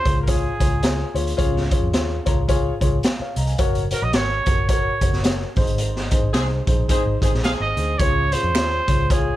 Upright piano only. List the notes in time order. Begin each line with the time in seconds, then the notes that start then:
0.04 F4 G#4 C#5
0.28 F4 G#4 C#5
0.60 F4 G#4 C#5
0.82 F4 G#4 C#5
1.14 F4 G#4 C#5
1.37 C#3 F4 G#4 C#5
1.71 F4 G#4 C#5
1.93 F4 G#4 C#5
2.25 F4 G#4 C#5 A#5
2.48 F4 G#4 C#5 G#5
2.80 F4 G#4 C#5
3.04 F5
3.21 C#5 F5
3.37 D#5 A#5
3.47 F5 G#5
3.59 F#4 A#4 C#5
3.91 F#4 A#4 C#5
4.14 F#4 A#4 C#5
4.46 F#4 A#4 C#5
4.68 F#4 A#4 C#5
5.02 F#4 A#4 C#5
5.23 F#4 A#4 C#5
5.56 G#2 D#4 G#4 C5
6.11 D#4 G#4 C5
6.34 D#4 G#4 C5
6.67 D#4 G#4 C5
6.90 D#4 G#4 C5
7.21 D#4 G#4 C5
7.46 C5
7.76 D#4 G#4 C5
8.00 C#3 F4 G#4 C#5
8.32 F4 G#4 C#5
8.55 F4 G#4 C#5
8.88 F4 G#4 C#5
9.10 F4 G#4 C#5